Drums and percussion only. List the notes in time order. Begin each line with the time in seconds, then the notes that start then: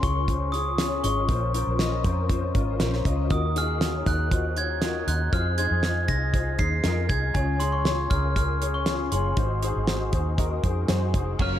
0.03 kick, closed hi-hat
0.28 kick, closed hi-hat
0.54 closed hi-hat
0.78 snare, closed hi-hat
1.04 closed hi-hat
1.29 kick, closed hi-hat
1.54 closed hi-hat
1.79 snare, closed hi-hat
2.04 kick, closed hi-hat
2.29 kick, closed hi-hat
2.55 kick, closed hi-hat
2.80 snare, closed hi-hat
2.93 snare
3.05 kick, closed hi-hat
3.30 kick, closed hi-hat
3.56 closed hi-hat
3.81 snare, closed hi-hat
4.06 kick, closed hi-hat
4.31 kick, closed hi-hat
4.57 closed hi-hat
4.82 snare, closed hi-hat
5.08 closed hi-hat
5.33 kick, closed hi-hat
5.58 closed hi-hat
5.83 snare, closed hi-hat
6.08 kick, closed hi-hat
6.34 kick, closed hi-hat
6.59 kick, closed hi-hat
6.84 snare, closed hi-hat
7.10 kick, closed hi-hat
7.35 kick, closed hi-hat
7.60 closed hi-hat
7.85 snare, closed hi-hat
8.11 kick, closed hi-hat
8.36 kick, closed hi-hat
8.62 closed hi-hat
8.86 snare, closed hi-hat
9.12 closed hi-hat
9.37 kick, closed hi-hat
9.62 closed hi-hat
9.87 snare, closed hi-hat
10.13 kick, closed hi-hat
10.38 kick, closed hi-hat
10.64 kick, closed hi-hat
10.88 snare, closed hi-hat
11.14 kick, closed hi-hat
11.39 kick, crash